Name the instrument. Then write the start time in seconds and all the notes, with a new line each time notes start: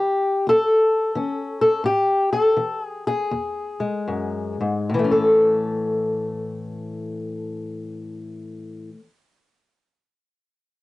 steel-string acoustic guitar
Already playing: E3 G4
0.47 E2 A4
1.15 E3 C#4
1.61 A4
1.84 A2 G4
2.33 A4
2.57 E3
2.84 G#4
3.07 G#4
3.31 E2
3.80 G#3
4.08 F#2
4.61 G#2
4.90 A2
4.94 E3
4.99 A3
5.04 C#4
5.11 A4